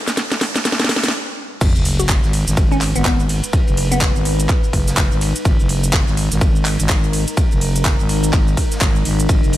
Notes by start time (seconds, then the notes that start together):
Already playing: F#1 G#3 D#4 B4, riser
0.08 snare, closed hi-hat, shaker
0.17 snare, closed hi-hat, shaker
0.32 G#1, snare, closed hi-hat, shaker
0.41 snare, open hi-hat
0.56 snare, closed hi-hat, shaker
0.65 B1, snare, closed hi-hat, shaker
0.72 snare
0.80 snare, closed hi-hat, shaker
0.84 snare
0.89 snare, open hi-hat
0.96 snare
1.04 B1, snare, closed hi-hat, shaker
1.08 snare
1.61 G#1 G#3 D#4 B4, kick, closed hi-hat, crash, ride, sub drop, shaker
1.76 F#1, shaker
1.85 open hi-hat, ride
1.99 F#4, closed hi-hat, shaker
2.09 kick, snare, clap, closed hi-hat, ride, shaker
2.24 G#1, snare, shaker
2.33 open hi-hat, ride
2.48 G#1, snare, closed hi-hat, shaker
2.57 kick, closed hi-hat, ride, shaker
2.72 C#4, shaker
2.81 clap, open hi-hat, ride
2.96 G#1 B3, closed hi-hat, shaker
3.05 B3, kick, snare, clap, closed hi-hat, ride, shaker
3.20 ride, shaker
3.29 open hi-hat, ride
3.44 closed hi-hat, shaker
3.53 kick, closed hi-hat, ride, shaker
3.67 F#1, ride, shaker
3.77 open hi-hat, ride
3.92 B3, closed hi-hat, shaker
4.01 kick, snare, clap, closed hi-hat, shaker
4.16 G#1, shaker
4.25 open hi-hat, ride
4.40 closed hi-hat, ride, shaker
4.49 kick, clap, closed hi-hat, ride, shaker
4.64 shaker
4.73 F#1, kick, open hi-hat, ride
4.88 snare, closed hi-hat, shaker
4.97 kick, snare, clap, closed hi-hat, ride, shaker
5.12 G#1, shaker
5.21 open hi-hat, ride
5.36 closed hi-hat, shaker
5.45 G#1 A#4, kick, closed hi-hat, ride, shaker
5.60 F#1, shaker
5.69 open hi-hat, ride
5.84 closed hi-hat, shaker
5.93 kick, snare, clap, closed hi-hat, ride, shaker
6.07 G#1, snare, shaker
6.17 open hi-hat, ride
6.32 G#1, snare, closed hi-hat, shaker
6.41 kick, closed hi-hat, ride, shaker
6.56 shaker
6.65 clap, open hi-hat, ride
6.80 G#1, closed hi-hat, shaker
6.89 kick, snare, clap, closed hi-hat, shaker
7.04 ride, shaker
7.13 open hi-hat, ride
7.28 closed hi-hat, shaker
7.37 kick, closed hi-hat, ride, shaker
7.52 F#1, ride, shaker
7.61 open hi-hat, ride
7.76 closed hi-hat, shaker
7.85 kick, snare, clap, closed hi-hat, ride, shaker
8.00 G#1, shaker
8.09 open hi-hat, ride
8.24 closed hi-hat, ride, shaker
8.33 G#1, kick, clap, closed hi-hat, ride, shaker
8.48 shaker
8.57 kick, open hi-hat, ride
8.72 snare, closed hi-hat, shaker
8.81 G#1, kick, snare, clap, closed hi-hat, ride, shaker
8.96 shaker
9.05 G#1, open hi-hat, ride
9.20 closed hi-hat, shaker
9.29 G#1 B4, kick, closed hi-hat, ride, shaker
9.44 F#1, shaker
9.53 open hi-hat, ride